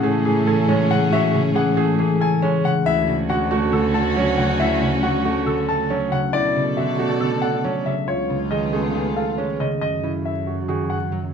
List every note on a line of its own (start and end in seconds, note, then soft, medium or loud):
0.00 2.73 A2 medium
0.00 0.89 C#3 medium
0.00 0.24 E3 medium
0.00 0.67 G#3 loud
0.00 1.76 A3 medium
0.00 1.11 C#4 medium
0.00 2.60 C#4 medium
0.00 2.60 G#4 medium
0.00 0.32 G#4 medium
0.00 0.10 F#5 medium
0.25 1.54 E3 medium
0.25 0.54 G#4 medium
0.47 0.75 A4 medium
0.47 0.75 G#5 medium
0.68 2.41 G#3 loud
0.68 0.97 C#4 loud
0.90 1.33 C#3 medium
0.90 1.19 F#5 medium
1.12 5.02 C#4 loud
1.12 1.40 F#4 medium
1.12 1.41 E5 loud
1.34 2.63 C#3 medium
1.55 1.97 E3 medium
1.55 1.75 G#4 medium
1.55 1.84 F#5 medium
1.77 3.50 A3 loud
1.77 2.05 G#4 loud
1.99 2.87 E3 medium
1.99 2.28 G#4 medium
2.21 2.49 A4 medium
2.21 2.49 G#5 medium
2.42 2.87 G#3 loud
2.42 2.71 C#4 loud
2.64 2.88 C#3 medium
2.64 2.93 F#5 medium
2.86 6.21 D2 medium
2.86 6.08 C#4 medium
2.86 3.14 E4 medium
2.86 6.08 F#4 medium
2.86 3.14 E5 loud
3.07 4.37 C#3 medium
3.29 3.71 D3 medium
3.29 3.50 F#4 medium
3.29 3.58 F#5 medium
3.51 5.24 A3 loud
3.51 3.80 F#4 medium
3.72 5.02 D3 medium
3.72 4.01 A4 medium
3.94 4.23 A4 medium
3.94 4.23 A5 medium
4.16 5.89 F#3 medium
4.16 4.45 C#4 medium
4.38 4.81 C#3 medium
4.38 4.66 F#5 medium
4.60 4.88 E4 medium
4.60 4.88 E5 medium
4.82 6.11 C#3 medium
5.03 5.46 D3 medium
5.03 5.24 F#4 medium
5.03 5.31 F#5 medium
5.25 6.98 A3 medium
5.25 5.53 F#4 medium
5.47 6.35 D3 medium
5.47 5.75 A4 medium
5.69 5.97 A4 medium
5.69 5.97 A5 medium
5.90 7.63 F#3 medium
5.90 6.19 C#4 medium
6.12 6.35 C#3 medium
6.12 6.40 F#5 medium
6.33 7.95 B2 medium
6.33 6.62 E4 medium
6.33 7.82 A4 medium
6.33 6.62 D5 medium
6.33 7.82 D5 medium
6.56 7.85 C#3 medium
6.77 7.20 D3 medium
6.77 6.97 F#4 medium
6.77 7.05 E5 medium
6.99 8.72 A3 medium
6.99 7.27 F#4 medium
7.21 8.10 D3 medium
7.21 7.49 A4 medium
7.42 7.71 A4 medium
7.42 7.70 F#5 medium
7.64 8.09 F#3 medium
7.64 7.93 C#4 medium
7.86 8.09 C#3 medium
7.86 8.14 E5 medium
8.08 9.69 C#2 medium
8.08 9.56 B3 medium
8.08 8.36 F4 medium
8.08 9.56 F4 medium
8.08 8.36 C#5 medium
8.30 9.59 C#3 medium
8.51 8.94 D#3 medium
8.51 8.71 G#4 medium
8.51 8.79 D#5 medium
8.73 11.34 A3 medium
8.73 9.01 G#4 medium
8.95 9.83 D#3 medium
8.95 9.23 G#4 medium
9.16 9.45 A4 medium
9.16 9.45 F5 medium
9.38 11.34 G#3 medium
9.38 9.66 C#4 medium
9.60 9.83 C#3 medium
9.60 9.80 D#5 medium
9.81 11.34 F#2 medium
9.81 10.10 D#5 medium
10.03 11.33 C#3 medium
10.03 10.32 E4 medium
10.25 10.53 E5 medium
10.47 10.67 F#4 medium
10.68 11.34 D#3 medium
10.68 10.97 F#4 medium
10.68 10.97 G#4 medium
10.90 11.18 F#5 medium
11.12 11.34 F#3 medium